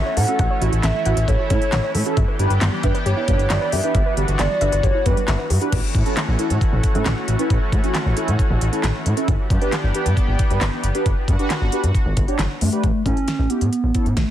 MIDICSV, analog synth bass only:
0, 0, Header, 1, 2, 480
1, 0, Start_track
1, 0, Tempo, 444444
1, 422, Time_signature, 4, 2, 24, 8
1, 15450, End_track
2, 0, Start_track
2, 0, Title_t, "Analog synth bass"
2, 0, Program_c, 0, 38
2, 182, Note_on_c, 0, 45, 100
2, 270, Note_off_c, 0, 45, 0
2, 423, Note_on_c, 0, 33, 106
2, 510, Note_off_c, 0, 33, 0
2, 663, Note_on_c, 0, 33, 107
2, 750, Note_off_c, 0, 33, 0
2, 782, Note_on_c, 0, 33, 97
2, 870, Note_off_c, 0, 33, 0
2, 902, Note_on_c, 0, 33, 114
2, 990, Note_off_c, 0, 33, 0
2, 1142, Note_on_c, 0, 33, 100
2, 1230, Note_off_c, 0, 33, 0
2, 1263, Note_on_c, 0, 33, 97
2, 1350, Note_off_c, 0, 33, 0
2, 1382, Note_on_c, 0, 33, 113
2, 1470, Note_off_c, 0, 33, 0
2, 1625, Note_on_c, 0, 45, 105
2, 1711, Note_off_c, 0, 45, 0
2, 1863, Note_on_c, 0, 33, 98
2, 1950, Note_off_c, 0, 33, 0
2, 2103, Note_on_c, 0, 45, 97
2, 2190, Note_off_c, 0, 45, 0
2, 2344, Note_on_c, 0, 31, 111
2, 2431, Note_off_c, 0, 31, 0
2, 2583, Note_on_c, 0, 31, 99
2, 2670, Note_off_c, 0, 31, 0
2, 2703, Note_on_c, 0, 31, 101
2, 2790, Note_off_c, 0, 31, 0
2, 2823, Note_on_c, 0, 31, 104
2, 2910, Note_off_c, 0, 31, 0
2, 3063, Note_on_c, 0, 31, 103
2, 3150, Note_off_c, 0, 31, 0
2, 3303, Note_on_c, 0, 31, 105
2, 3390, Note_off_c, 0, 31, 0
2, 3544, Note_on_c, 0, 31, 106
2, 3631, Note_off_c, 0, 31, 0
2, 3662, Note_on_c, 0, 31, 94
2, 3750, Note_off_c, 0, 31, 0
2, 3782, Note_on_c, 0, 31, 98
2, 3870, Note_off_c, 0, 31, 0
2, 4023, Note_on_c, 0, 43, 98
2, 4110, Note_off_c, 0, 43, 0
2, 4262, Note_on_c, 0, 31, 118
2, 4350, Note_off_c, 0, 31, 0
2, 4503, Note_on_c, 0, 31, 108
2, 4590, Note_off_c, 0, 31, 0
2, 4623, Note_on_c, 0, 31, 105
2, 4710, Note_off_c, 0, 31, 0
2, 4743, Note_on_c, 0, 31, 98
2, 4830, Note_off_c, 0, 31, 0
2, 4982, Note_on_c, 0, 31, 98
2, 5070, Note_off_c, 0, 31, 0
2, 5102, Note_on_c, 0, 31, 95
2, 5190, Note_off_c, 0, 31, 0
2, 5221, Note_on_c, 0, 31, 105
2, 5309, Note_off_c, 0, 31, 0
2, 5464, Note_on_c, 0, 43, 104
2, 5551, Note_off_c, 0, 43, 0
2, 5703, Note_on_c, 0, 31, 98
2, 5790, Note_off_c, 0, 31, 0
2, 5942, Note_on_c, 0, 43, 103
2, 6030, Note_off_c, 0, 43, 0
2, 6183, Note_on_c, 0, 33, 108
2, 6271, Note_off_c, 0, 33, 0
2, 6422, Note_on_c, 0, 45, 105
2, 6510, Note_off_c, 0, 45, 0
2, 6783, Note_on_c, 0, 33, 97
2, 6870, Note_off_c, 0, 33, 0
2, 7023, Note_on_c, 0, 45, 98
2, 7110, Note_off_c, 0, 45, 0
2, 7263, Note_on_c, 0, 33, 105
2, 7350, Note_off_c, 0, 33, 0
2, 7504, Note_on_c, 0, 45, 99
2, 7591, Note_off_c, 0, 45, 0
2, 7624, Note_on_c, 0, 33, 101
2, 7711, Note_off_c, 0, 33, 0
2, 7864, Note_on_c, 0, 33, 90
2, 7951, Note_off_c, 0, 33, 0
2, 8103, Note_on_c, 0, 33, 121
2, 8191, Note_off_c, 0, 33, 0
2, 8343, Note_on_c, 0, 45, 106
2, 8430, Note_off_c, 0, 45, 0
2, 8703, Note_on_c, 0, 33, 90
2, 8790, Note_off_c, 0, 33, 0
2, 8943, Note_on_c, 0, 45, 93
2, 9031, Note_off_c, 0, 45, 0
2, 9183, Note_on_c, 0, 33, 103
2, 9270, Note_off_c, 0, 33, 0
2, 9303, Note_on_c, 0, 33, 113
2, 9391, Note_off_c, 0, 33, 0
2, 9543, Note_on_c, 0, 33, 97
2, 9630, Note_off_c, 0, 33, 0
2, 9783, Note_on_c, 0, 45, 101
2, 9871, Note_off_c, 0, 45, 0
2, 10024, Note_on_c, 0, 31, 114
2, 10111, Note_off_c, 0, 31, 0
2, 10262, Note_on_c, 0, 43, 103
2, 10350, Note_off_c, 0, 43, 0
2, 10623, Note_on_c, 0, 31, 100
2, 10711, Note_off_c, 0, 31, 0
2, 10863, Note_on_c, 0, 43, 90
2, 10950, Note_off_c, 0, 43, 0
2, 11103, Note_on_c, 0, 31, 98
2, 11191, Note_off_c, 0, 31, 0
2, 11343, Note_on_c, 0, 43, 98
2, 11430, Note_off_c, 0, 43, 0
2, 11464, Note_on_c, 0, 31, 102
2, 11551, Note_off_c, 0, 31, 0
2, 11704, Note_on_c, 0, 31, 94
2, 11791, Note_off_c, 0, 31, 0
2, 11943, Note_on_c, 0, 31, 109
2, 12031, Note_off_c, 0, 31, 0
2, 12183, Note_on_c, 0, 43, 108
2, 12270, Note_off_c, 0, 43, 0
2, 12543, Note_on_c, 0, 31, 94
2, 12631, Note_off_c, 0, 31, 0
2, 12782, Note_on_c, 0, 43, 100
2, 12870, Note_off_c, 0, 43, 0
2, 13023, Note_on_c, 0, 31, 104
2, 13110, Note_off_c, 0, 31, 0
2, 13144, Note_on_c, 0, 31, 108
2, 13231, Note_off_c, 0, 31, 0
2, 13383, Note_on_c, 0, 31, 101
2, 13470, Note_off_c, 0, 31, 0
2, 13622, Note_on_c, 0, 43, 93
2, 13710, Note_off_c, 0, 43, 0
2, 13863, Note_on_c, 0, 33, 105
2, 13950, Note_off_c, 0, 33, 0
2, 14102, Note_on_c, 0, 45, 102
2, 14189, Note_off_c, 0, 45, 0
2, 14461, Note_on_c, 0, 33, 101
2, 14549, Note_off_c, 0, 33, 0
2, 14701, Note_on_c, 0, 45, 89
2, 14789, Note_off_c, 0, 45, 0
2, 14941, Note_on_c, 0, 33, 97
2, 15029, Note_off_c, 0, 33, 0
2, 15181, Note_on_c, 0, 45, 91
2, 15269, Note_off_c, 0, 45, 0
2, 15301, Note_on_c, 0, 33, 104
2, 15389, Note_off_c, 0, 33, 0
2, 15450, End_track
0, 0, End_of_file